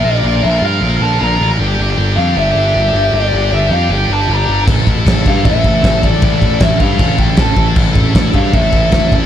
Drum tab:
CC |--------|--------|--------|xxxxxxxx|
SD |--------|--------|--------|--o---o-|
BD |--------|--------|--------|oooooooo|

CC |xxxxxxxx|xxxxxxxx|
SD |--o---o-|--o---o-|
BD |oooooooo|oooooooo|